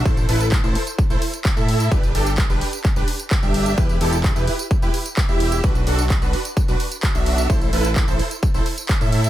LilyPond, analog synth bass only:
\new Staff \with { instrumentName = "Analog synth bass" } { \clef bass \time 4/4 \key a \dorian \tempo 4 = 129 a,,8 a,,8. a,,16 r8. a,,16 r8. a,8. | g,,8 g,,8. g,,16 r8. g,,16 r8. g,,8. | e,,8 e,,8. e,,16 r8. e,,16 r8. e,,8. | b,,8 b,,8. b,,16 r8. b,,16 r8. b,,8. |
a,,8 a,,8. a,,16 r8. a,,16 r8. a,8. | }